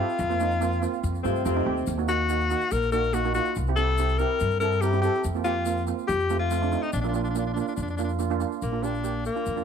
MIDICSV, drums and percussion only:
0, 0, Header, 1, 2, 480
1, 0, Start_track
1, 0, Key_signature, -2, "major"
1, 0, Tempo, 421348
1, 218, Time_signature, 4, 2, 24, 8
1, 10983, End_track
2, 0, Start_track
2, 0, Title_t, "Drums"
2, 109, Note_on_c, 9, 82, 24
2, 213, Note_off_c, 9, 82, 0
2, 213, Note_on_c, 9, 82, 81
2, 327, Note_off_c, 9, 82, 0
2, 344, Note_on_c, 9, 82, 25
2, 455, Note_off_c, 9, 82, 0
2, 455, Note_on_c, 9, 82, 65
2, 568, Note_off_c, 9, 82, 0
2, 580, Note_on_c, 9, 82, 27
2, 694, Note_off_c, 9, 82, 0
2, 700, Note_on_c, 9, 82, 85
2, 814, Note_off_c, 9, 82, 0
2, 826, Note_on_c, 9, 82, 24
2, 940, Note_off_c, 9, 82, 0
2, 942, Note_on_c, 9, 82, 69
2, 1056, Note_off_c, 9, 82, 0
2, 1066, Note_on_c, 9, 82, 25
2, 1180, Note_off_c, 9, 82, 0
2, 1181, Note_on_c, 9, 82, 87
2, 1295, Note_off_c, 9, 82, 0
2, 1309, Note_on_c, 9, 82, 27
2, 1420, Note_off_c, 9, 82, 0
2, 1420, Note_on_c, 9, 82, 75
2, 1534, Note_off_c, 9, 82, 0
2, 1547, Note_on_c, 9, 82, 27
2, 1658, Note_off_c, 9, 82, 0
2, 1658, Note_on_c, 9, 82, 98
2, 1772, Note_off_c, 9, 82, 0
2, 2020, Note_on_c, 9, 82, 29
2, 2126, Note_off_c, 9, 82, 0
2, 2126, Note_on_c, 9, 82, 94
2, 2240, Note_off_c, 9, 82, 0
2, 2261, Note_on_c, 9, 82, 30
2, 2372, Note_off_c, 9, 82, 0
2, 2372, Note_on_c, 9, 82, 80
2, 2486, Note_off_c, 9, 82, 0
2, 2609, Note_on_c, 9, 82, 99
2, 2723, Note_off_c, 9, 82, 0
2, 2740, Note_on_c, 9, 82, 28
2, 2854, Note_off_c, 9, 82, 0
2, 2854, Note_on_c, 9, 82, 76
2, 2968, Note_off_c, 9, 82, 0
2, 2976, Note_on_c, 9, 82, 29
2, 3088, Note_off_c, 9, 82, 0
2, 3088, Note_on_c, 9, 82, 97
2, 3202, Note_off_c, 9, 82, 0
2, 3214, Note_on_c, 9, 82, 29
2, 3328, Note_off_c, 9, 82, 0
2, 3329, Note_on_c, 9, 82, 79
2, 3443, Note_off_c, 9, 82, 0
2, 3458, Note_on_c, 9, 82, 27
2, 3571, Note_off_c, 9, 82, 0
2, 3571, Note_on_c, 9, 82, 100
2, 3685, Note_off_c, 9, 82, 0
2, 3698, Note_on_c, 9, 82, 27
2, 3809, Note_off_c, 9, 82, 0
2, 3809, Note_on_c, 9, 82, 72
2, 3923, Note_off_c, 9, 82, 0
2, 3933, Note_on_c, 9, 82, 28
2, 4047, Note_off_c, 9, 82, 0
2, 4048, Note_on_c, 9, 82, 93
2, 4162, Note_off_c, 9, 82, 0
2, 4179, Note_on_c, 9, 82, 29
2, 4291, Note_off_c, 9, 82, 0
2, 4291, Note_on_c, 9, 82, 72
2, 4405, Note_off_c, 9, 82, 0
2, 4532, Note_on_c, 9, 82, 102
2, 4646, Note_off_c, 9, 82, 0
2, 4658, Note_on_c, 9, 82, 29
2, 4772, Note_off_c, 9, 82, 0
2, 4772, Note_on_c, 9, 82, 80
2, 4886, Note_off_c, 9, 82, 0
2, 5010, Note_on_c, 9, 82, 93
2, 5124, Note_off_c, 9, 82, 0
2, 5139, Note_on_c, 9, 82, 30
2, 5249, Note_off_c, 9, 82, 0
2, 5249, Note_on_c, 9, 82, 80
2, 5363, Note_off_c, 9, 82, 0
2, 5379, Note_on_c, 9, 82, 30
2, 5491, Note_off_c, 9, 82, 0
2, 5491, Note_on_c, 9, 82, 96
2, 5605, Note_off_c, 9, 82, 0
2, 5616, Note_on_c, 9, 82, 28
2, 5730, Note_off_c, 9, 82, 0
2, 5730, Note_on_c, 9, 82, 74
2, 5844, Note_off_c, 9, 82, 0
2, 5864, Note_on_c, 9, 82, 31
2, 5969, Note_off_c, 9, 82, 0
2, 5969, Note_on_c, 9, 82, 102
2, 6082, Note_off_c, 9, 82, 0
2, 6095, Note_on_c, 9, 82, 30
2, 6204, Note_off_c, 9, 82, 0
2, 6204, Note_on_c, 9, 82, 80
2, 6317, Note_off_c, 9, 82, 0
2, 6441, Note_on_c, 9, 82, 105
2, 6555, Note_off_c, 9, 82, 0
2, 6575, Note_on_c, 9, 82, 28
2, 6689, Note_off_c, 9, 82, 0
2, 6689, Note_on_c, 9, 82, 82
2, 6803, Note_off_c, 9, 82, 0
2, 6820, Note_on_c, 9, 82, 28
2, 6934, Note_off_c, 9, 82, 0
2, 6935, Note_on_c, 9, 82, 102
2, 7048, Note_off_c, 9, 82, 0
2, 7060, Note_on_c, 9, 82, 29
2, 7172, Note_off_c, 9, 82, 0
2, 7172, Note_on_c, 9, 82, 76
2, 7286, Note_off_c, 9, 82, 0
2, 7411, Note_on_c, 9, 82, 101
2, 7525, Note_off_c, 9, 82, 0
2, 7545, Note_on_c, 9, 82, 29
2, 7655, Note_off_c, 9, 82, 0
2, 7655, Note_on_c, 9, 82, 74
2, 7769, Note_off_c, 9, 82, 0
2, 7780, Note_on_c, 9, 82, 30
2, 7890, Note_off_c, 9, 82, 0
2, 7890, Note_on_c, 9, 82, 101
2, 8004, Note_off_c, 9, 82, 0
2, 8020, Note_on_c, 9, 82, 29
2, 8133, Note_off_c, 9, 82, 0
2, 8134, Note_on_c, 9, 82, 71
2, 8248, Note_off_c, 9, 82, 0
2, 8259, Note_on_c, 9, 82, 29
2, 8373, Note_off_c, 9, 82, 0
2, 8376, Note_on_c, 9, 82, 101
2, 8490, Note_off_c, 9, 82, 0
2, 8620, Note_on_c, 9, 82, 72
2, 8734, Note_off_c, 9, 82, 0
2, 8744, Note_on_c, 9, 82, 27
2, 8850, Note_off_c, 9, 82, 0
2, 8850, Note_on_c, 9, 82, 91
2, 8964, Note_off_c, 9, 82, 0
2, 8974, Note_on_c, 9, 82, 29
2, 9088, Note_off_c, 9, 82, 0
2, 9092, Note_on_c, 9, 82, 71
2, 9206, Note_off_c, 9, 82, 0
2, 9215, Note_on_c, 9, 82, 27
2, 9329, Note_off_c, 9, 82, 0
2, 9331, Note_on_c, 9, 82, 86
2, 9445, Note_off_c, 9, 82, 0
2, 9458, Note_on_c, 9, 82, 26
2, 9572, Note_off_c, 9, 82, 0
2, 9574, Note_on_c, 9, 82, 63
2, 9688, Note_off_c, 9, 82, 0
2, 9705, Note_on_c, 9, 82, 26
2, 9817, Note_off_c, 9, 82, 0
2, 9817, Note_on_c, 9, 82, 77
2, 9931, Note_off_c, 9, 82, 0
2, 10065, Note_on_c, 9, 82, 64
2, 10179, Note_off_c, 9, 82, 0
2, 10190, Note_on_c, 9, 82, 24
2, 10299, Note_off_c, 9, 82, 0
2, 10299, Note_on_c, 9, 82, 88
2, 10413, Note_off_c, 9, 82, 0
2, 10540, Note_on_c, 9, 82, 65
2, 10654, Note_off_c, 9, 82, 0
2, 10665, Note_on_c, 9, 82, 25
2, 10774, Note_off_c, 9, 82, 0
2, 10774, Note_on_c, 9, 82, 82
2, 10888, Note_off_c, 9, 82, 0
2, 10904, Note_on_c, 9, 82, 24
2, 10983, Note_off_c, 9, 82, 0
2, 10983, End_track
0, 0, End_of_file